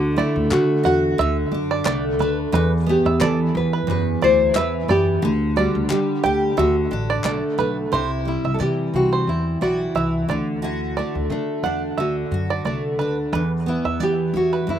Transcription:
Already playing: D2 D3 F#4
0.16 A3 E4 D5
0.36 D2
0.51 D3 A3 F#4, clap
0.83 E2 F#4 F#5
1.18 D2 D3 E5
1.51 F#2 D4
1.71 D5
1.85 C2 A3 D5, clap
2.19 D2 A3 B4
2.52 E2 B4
2.86 B3 G4
3.06 E2 E5
3.20 E3 A4 D5, clap
3.55 E2 B4
3.73 B4
3.87 E2 F#2 B4
4.22 D2 E4 C5 D5
4.55 E2 E3 B4 E5, clap
4.88 F#2 B3 G4 D5
5.22 D2 D3
5.56 G3 F#4 D5
5.75 D2
5.90 D3 G3 G4, clap
6.24 D2 G4 G5
6.57 D2 D3 F#4 E5
6.91 A1 D4
7.10 D5
7.24 B1 A3 D5, clap
7.58 B1 A3 B4
7.92 C2 C3 E4 C5
8.25 G3 E4
8.44 C2 E5
8.54 A4
8.59 C3 E3 G4 D5
8.93 C2 C4 F#4
9.13 C5
9.27 E2 E4
9.61 B1 E4 F#4 D5
9.95 C2 E3 E5
10.29 D2 D3 D5
10.62 D3 E4 F#4
10.97 A3 D5
11.15 D2
11.30 D3 A3 D4
11.63 E2 D4 F#5
11.98 D2 D3 F#4 E5
12.31 F#2 F#4
12.50 D5
12.65 C2 A3 D5
12.99 D2 D4 B4
13.33 E2 B4
13.66 B3 E4
13.84 E2 E5
14.00 E3 G4 D5
14.34 E2 E4 F#4
14.53 B4
14.67 E2 F#2 E4

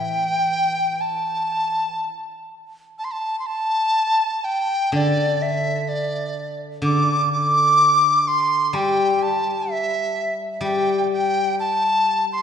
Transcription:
Already playing: E3 G5
1.01 A5
2.99 A5
3.04 C6
3.12 A5
3.39 C6
3.46 A5
4.44 G5
4.92 D3 D5
5.42 E5
5.89 D5
6.82 D3 D6
7.32 D6
8.28 C6
8.73 G3 G5
9.23 A5
9.71 E5
10.61 G3 G5
11.13 G5
11.60 A5
12.32 C6

